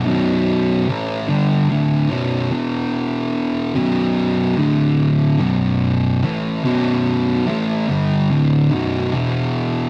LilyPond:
\new Staff \with { instrumentName = "Distorted electric guitar" } { \clef bass \time 4/4 \key b \minor \tempo 4 = 73 <b,, fis, b,>4 <a, e a>8 <g, d g>8 <d, a, d>8 <b,, fis, b,>8 <e, b, e>4~ | <e, b, e>8 <b,, fis, b,>4 <d, a, d>4 <b,, fis, b,>4 <a, e a>8 | <b,, fis, b,>4 <a, e a>8 <g, d g>8 <d, a, d>8 <b,, fis, b,>8 <e, b, e>4 | }